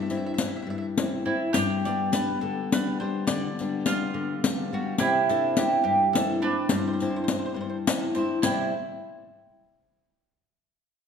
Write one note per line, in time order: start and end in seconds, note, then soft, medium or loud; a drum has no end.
0.00 0.36 G2 medium
0.00 1.24 E4 medium
0.00 0.09 E5 medium
0.10 0.37 C4 soft
0.10 0.37 D4 soft
0.10 0.38 E4 medium
0.10 0.16 E5 medium
0.10 riq soft
0.17 0.24 E5 soft
0.26 0.33 E5 medium
0.34 0.40 E5 medium
0.38 0.86 C4 soft
0.38 0.86 D4 soft
0.38 0.86 E4 soft
0.38 0.47 E5 medium
0.38 riq medium
0.48 0.55 E5 medium
0.56 0.61 E5 medium
0.62 0.69 E5 medium
0.67 1.24 G2 medium
0.67 0.77 E5 medium
0.78 0.85 E5 medium
0.97 1.25 C4 soft
0.97 1.25 D4 soft
0.97 1.26 E4 soft
0.97 riq medium
1.26 1.48 C4 soft
1.26 1.48 D4 soft
1.26 1.53 E4 medium
1.26 1.49 E4 soft
1.53 2.12 G2 medium
1.53 3.82 G4 loud
1.53 riq medium
1.85 2.12 G3 soft
1.85 2.12 B3 soft
1.85 2.12 D4 medium
1.85 2.11 D5 medium
1.85 riq soft
2.12 2.60 G3 soft
2.12 2.61 B3 soft
2.12 2.61 D4 soft
2.12 2.41 B4 medium
2.12 riq medium
2.41 2.99 D3 medium
2.41 2.70 A4 medium
2.72 3.00 G3 soft
2.72 3.00 B3 soft
2.72 3.00 D4 soft
2.72 2.98 B4 medium
2.72 riq medium
3.00 3.47 G3 soft
3.00 3.48 B3 soft
3.00 3.48 D4 medium
3.00 3.26 C5 medium
3.27 3.85 D3 medium
3.27 4.40 D5 medium
3.27 riq medium
3.59 3.87 G3 medium
3.59 3.87 B3 soft
3.59 3.87 D4 medium
3.59 riq soft
3.86 4.34 G3 medium
3.86 4.34 B3 soft
3.86 4.34 D4 medium
3.86 4.99 F4 medium
3.86 riq medium
4.14 4.70 D3 medium
4.44 4.71 G3 soft
4.44 4.72 B3 soft
4.44 4.72 D4 medium
4.44 riq medium
4.72 4.94 G3 medium
4.72 4.94 B3 medium
4.72 4.95 D4 medium
4.72 4.98 F#4 medium
4.98 5.56 C3 medium
4.98 6.39 E4 medium
4.98 5.28 G4 medium
4.98 riq medium
5.29 5.57 C4 medium
5.29 5.57 D4 soft
5.29 5.57 E4 medium
5.29 5.55 A4 medium
5.29 riq soft
5.57 6.04 C4 soft
5.57 6.04 D4 soft
5.57 6.04 E4 medium
5.57 5.82 G4 medium
5.57 riq medium
5.84 6.41 G2 medium
5.84 6.13 G4 medium
6.13 6.42 C4 soft
6.13 6.42 D4 soft
6.13 6.42 E4 soft
6.13 6.40 A4 medium
6.13 riq medium
6.42 6.90 C4 medium
6.42 8.12 D4 medium
6.42 6.90 D4 soft
6.42 6.90 E4 soft
6.42 6.68 B4 medium
6.69 7.27 G2 medium
6.69 6.77 C5 medium
6.69 riq medium
6.78 6.86 C5 medium
6.87 6.92 C5 medium
6.93 7.01 C5 medium
7.00 7.28 C4 medium
7.00 7.28 D4 soft
7.00 7.29 E4 medium
7.00 7.09 C5 medium
7.00 riq soft
7.10 7.15 C5 soft
7.16 7.23 C5 medium
7.24 7.30 C5 medium
7.28 7.76 C4 soft
7.28 7.76 D4 soft
7.28 7.77 E4 soft
7.28 riq medium
7.33 7.37 C5 medium
7.39 7.44 C5 soft
7.46 7.52 C5 medium
7.54 8.14 G2 medium
7.54 7.59 C5 medium
7.61 7.68 C5 medium
7.70 7.76 C5 medium
7.87 8.15 C4 soft
7.87 8.15 D4 soft
7.87 8.16 E4 soft
7.87 riq medium
8.15 8.41 C4 medium
8.15 8.38 C4 soft
8.15 8.38 D4 soft
8.15 8.39 E4 medium
8.15 riq soft
8.42 8.73 C3 medium
8.42 8.73 G3 medium
8.42 8.72 E4 medium
8.42 8.73 E4 medium
8.42 8.73 C5 medium
8.42 8.73 D5 medium
8.42 8.74 G5 medium
8.42 riq medium